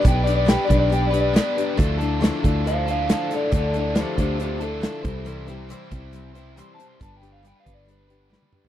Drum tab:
HH |x-x-x-x-x-x-x-x-|x-x-x-x-x-x-x-x-|x-x-x-x-x-x-x-x-|x-x-x-x-x-x-x-x-|
SD |----o-------o---|----o-------o---|----o-------o---|----------------|
T1 |----------------|----------------|----------------|----------------|
T2 |----------------|----------------|----------------|----------------|
FT |----------------|----------------|----------------|----------------|
BD |o-----o---------|o-----o---------|o-----o-------o-|------o---------|

HH |x-x-x-x-x-x-----|
SD |------------o---|
T1 |-------------o--|
T2 |--------------o-|
FT |---------------o|
BD |o-----o---------|